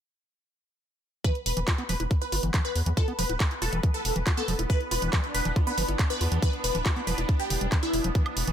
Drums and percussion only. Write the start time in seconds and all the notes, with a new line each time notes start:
1.24 kick, closed hi-hat
1.35 closed hi-hat
1.46 open hi-hat
1.57 closed hi-hat
1.68 kick, clap, closed hi-hat
1.78 closed hi-hat
1.89 open hi-hat
2.00 closed hi-hat
2.11 kick, closed hi-hat
2.22 closed hi-hat
2.32 open hi-hat
2.43 closed hi-hat
2.54 kick, clap, closed hi-hat
2.65 closed hi-hat
2.76 open hi-hat
2.86 closed hi-hat
2.97 kick, closed hi-hat
3.08 closed hi-hat
3.19 open hi-hat
3.29 closed hi-hat
3.40 kick, clap, closed hi-hat
3.51 closed hi-hat
3.62 open hi-hat
3.73 closed hi-hat
3.83 kick, closed hi-hat
3.94 closed hi-hat
4.05 open hi-hat
4.16 closed hi-hat
4.27 kick, clap, closed hi-hat
4.37 closed hi-hat
4.48 open hi-hat
4.59 closed hi-hat
4.70 kick, closed hi-hat
4.81 closed hi-hat
4.91 open hi-hat
5.02 closed hi-hat
5.13 kick, clap, closed hi-hat
5.24 closed hi-hat
5.35 open hi-hat
5.45 closed hi-hat
5.56 kick, closed hi-hat
5.67 closed hi-hat
5.78 open hi-hat
5.88 closed hi-hat
5.99 kick, clap, closed hi-hat
6.10 closed hi-hat
6.21 open hi-hat
6.32 closed hi-hat
6.42 kick, closed hi-hat
6.53 closed hi-hat
6.64 open hi-hat
6.75 closed hi-hat
6.86 kick, clap, closed hi-hat
6.96 closed hi-hat
7.07 open hi-hat
7.18 closed hi-hat
7.29 kick, closed hi-hat
7.40 closed hi-hat
7.50 open hi-hat
7.61 closed hi-hat
7.72 kick, clap, closed hi-hat
7.83 closed hi-hat
7.93 open hi-hat
8.04 closed hi-hat
8.15 kick, closed hi-hat
8.26 closed hi-hat, high woodblock
8.37 open hi-hat
8.47 closed hi-hat